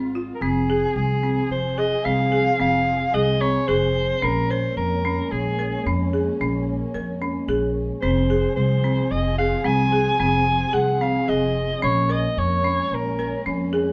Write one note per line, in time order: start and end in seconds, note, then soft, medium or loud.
0.00 0.29 G#1 medium
0.00 0.37 G#3 medium
0.00 0.38 C4 medium
0.00 0.39 F4 medium
0.15 0.29 F4 medium
0.35 0.43 A#4 medium
0.41 0.83 F1 medium
0.41 4.19 F3 medium
0.41 0.56 C4 medium
0.41 4.19 C4 medium
0.41 0.96 G#4 medium
0.41 4.19 G#4 medium
0.70 0.98 G#4 medium
0.95 1.37 C2 medium
0.95 1.47 G#4 medium
1.23 1.52 C4 medium
1.50 1.92 F1 medium
1.50 1.80 C5 medium
1.78 1.92 G#4 medium
1.78 2.06 D#5 medium
2.05 2.47 C2 medium
2.05 2.19 C4 medium
2.05 2.59 F5 medium
2.32 2.46 G#4 medium
2.60 3.02 F1 medium
2.60 2.88 C4 medium
2.60 3.15 F5 medium
3.14 3.55 C2 medium
3.14 3.28 G#4 medium
3.14 3.42 D#5 medium
3.41 3.55 C4 medium
3.41 3.69 C#5 medium
3.67 4.10 F1 medium
3.67 3.97 G#4 medium
3.67 4.25 C5 medium
4.22 4.64 A#1 medium
4.22 7.99 G#3 medium
4.22 7.99 A#3 medium
4.22 4.37 C#4 medium
4.22 7.99 C#4 medium
4.22 4.52 A#4 medium
4.50 4.79 A#4 medium
4.50 4.76 C5 medium
4.77 5.18 F2 medium
4.77 5.33 A#4 medium
5.05 5.33 C#4 medium
5.32 5.73 A#1 medium
5.32 5.86 G#4 medium
5.59 5.73 A#4 medium
5.86 6.28 F2 medium
5.86 6.01 C#4 medium
6.13 6.27 G#4 medium
6.41 6.82 A#1 medium
6.41 6.69 C#4 medium
6.94 7.36 F2 medium
6.94 7.09 A#4 medium
7.22 7.36 C#4 medium
7.48 7.90 A#1 medium
7.48 7.77 G#4 medium
8.02 8.44 F1 medium
8.02 11.79 F3 medium
8.02 8.17 C4 medium
8.02 11.79 C4 medium
8.02 11.79 G#4 medium
8.02 8.53 C5 medium
8.30 8.59 G#4 medium
8.56 8.99 C2 medium
8.56 9.13 C5 medium
8.84 9.13 C4 medium
9.11 9.53 F1 medium
9.11 9.38 D#5 medium
9.38 9.53 G#4 medium
9.38 9.67 F5 medium
9.64 10.07 C2 medium
9.64 9.79 C4 medium
9.64 10.20 G#5 loud
9.92 10.07 G#4 medium
10.20 10.61 F1 medium
10.20 10.48 C4 medium
10.20 10.76 G#5 medium
10.73 11.16 C2 medium
10.73 10.88 G#4 medium
10.73 11.03 F#5 medium
11.01 11.15 C4 medium
11.01 11.30 F5 medium
11.28 11.70 F1 medium
11.28 11.57 G#4 medium
11.28 11.83 D#5 medium
11.82 12.25 A#1 medium
11.82 13.93 G#3 medium
11.82 13.93 A#3 medium
11.82 11.97 C#4 medium
11.82 13.93 C#4 medium
11.82 12.13 C#5 medium
12.09 12.38 A#4 medium
12.09 12.40 D#5 medium
12.37 12.79 F2 medium
12.37 12.96 C#5 medium
12.64 12.93 C#4 medium
12.91 13.33 A#1 medium
12.91 13.47 A#4 medium
13.19 13.33 A#4 medium
13.46 13.88 F2 medium
13.46 13.60 C#4 medium
13.73 13.87 G#4 medium